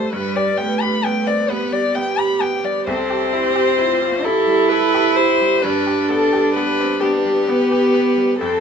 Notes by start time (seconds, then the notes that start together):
Already playing: G3 A3 B3 G4 A4 C5
0.13 G2 G3 B4
0.36 G4 D5
0.58 A3 B3 G5
0.80 G4 B5
1.04 B3 G5
1.27 C4 D5
1.50 B3 G4 B4
1.72 G3 D5
1.95 B3 G5
2.18 G4 B5
2.40 B3 G5
2.64 G3 D5
2.87 C2 C4 A4 C5
3.10 G4
3.33 E4 G4
3.55 G4
3.78 E4 F4
4.01 F4
4.24 E4 G4 A4
4.47 G3
4.69 E4 A4 B4
4.94 G4
5.15 E4 G4 C5
5.41 G3
5.63 G2 D4 B4
5.87 G4
6.09 B3 A4
6.33 G4
6.55 B3 G4 B4
6.80 C4
7.01 B3 D4 G4 B4
7.25 G3
7.49 B3
7.72 G4
7.94 B3
8.17 G3
8.39 F2 C4 A4